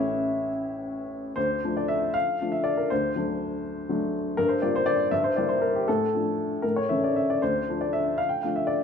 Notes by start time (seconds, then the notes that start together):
Already playing: A1 A2 E3 A3 C#4 E4 C#5 E5
1.36 D2 C5
1.64 F3 A3 D4
1.77 D5
1.88 E5
2.14 F5
2.41 F3 A3 D4
2.52 E5
2.64 D5
2.77 A#4
2.90 D2 C5
3.16 F#3 A3 D4
3.89 F#3 A3 D4
4.37 G2 A#4
4.49 C5
4.62 G3 A#3 F4 D5
4.76 C5
4.86 D5
5.11 G2 E5
5.24 C5
5.36 G3 A#3 E4 D5
5.49 C5
5.62 A#4
5.75 G4
5.88 A2 A4
6.15 F3 A3 D4
6.62 A2 A#4
6.76 C#5
6.89 E3 A3 C#4 E5
7.04 D5
7.16 E5
7.30 D5
7.42 D2 C5
7.69 F3 A3 D4
7.81 D5
7.93 E5
8.18 F5
8.29 G5
8.43 F3 A3 D4 F5
8.56 E5
8.67 D5